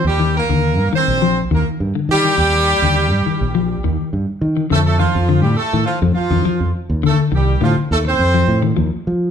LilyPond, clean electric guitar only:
\new Staff \with { instrumentName = "Clean electric guitar" } { \clef bass \time 4/4 \key f \mixolydian \tempo 4 = 103 r16 ees8 d8 r16 ees8 f8 ees8 r16 d8 ees16 | r8. d8 r16 ees8 f8 ees8 r8. ees16 | d8 ees8 d8 r16 ees8 f8 ees16 f8 r8 | d8 ees8 d8 r8. f8 ees16 f8 r8 | }